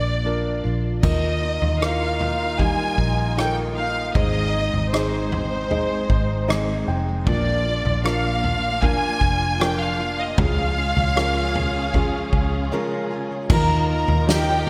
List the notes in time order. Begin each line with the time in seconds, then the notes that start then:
Already playing: A#1 A#2 F3 A#3 D4 F4 A#4 D5
0.24 F3 A#3 D4 F4 A#4
0.64 A#1 A#3 D4 F4
1.03 D#2 D#3 A#3 D#4 F4 A#4 D#5, kick, floor tom, crash
1.41 A#3 D#4 F4
1.62 D#2, floor tom
1.80 D#3 A#3 D#4 E4 F4 A#4 F5, cross-stick
1.88 F4
2.19 A#3 D#4 F4, floor tom
2.58 D#3 G3 A#3 D#4 F4 G#5, kick, floor tom
2.98 A#1, kick
3.36 D#3 A#3 D#4 F4 A4 G5, cross-stick
3.45 A#4
3.75 A#3 D#4 F4 F5
4.15 G#1 G#2 D#3 G#3 C4 D#4 G#4 C5 D#5, kick, floor tom
4.53 G#3 C4 D#4 G#4
4.73 G#1, floor tom
4.93 G#2 D#3 G#3 C4 D#4 G#4 C5 D#5, cross-stick
5.32 G#3 C4 D#4 G#4, floor tom
5.70 G#3 C4 D#4 G#4 D#5, floor tom
6.10 G#1 C5, kick
6.48 G#2 D#3 G#3 C4 D#4 G#4 D#5, cross-stick
6.87 F1 G#3 C4 D#4 G#4 G5
7.26 A#1 A#2 F3 A#3 D4 F4 A#4 D5, kick, floor tom
7.65 A#3 D4 F4
7.85 A#1, floor tom
8.04 A#2 F3 A#3 D4 F4 A#4 F5, cross-stick
8.43 A#3 D4 F4, floor tom
8.82 F3 A#3 D4 F4 A#4 G#5, kick, floor tom
9.21 F1, kick
9.60 A#2 F3 A#3 D4 F4 A#4 G5, cross-stick
9.80 F5
9.98 A#3 D4 F4
10.20 D#5
10.37 C#2 C#3 F3 G#3 C#4 F4 G#4 F5, kick, floor tom
10.76 G#3 C#4 F4
10.97 C#2, floor tom
11.16 C#3 F3 G#3 C#4 F4 A#4, cross-stick
11.55 G#3 C#4 F4, floor tom
11.93 F3 G#3 C#4 F4 G#4, kick, floor tom
12.33 C#2, kick
12.72 C#3 F3 G#3 C#4 F4 A#4
13.11 G#3 C#4 F4
13.50 D#2 D#3 A#3 D#4 F4 A#4 A#5, kick, floor tom, crash
13.89 A#3 D#4 F4 A#4 A#5
14.08 D#2, floor tom
14.27 D#3 A#3 D#4 F4 G4 A#4 G5, snare
14.66 F4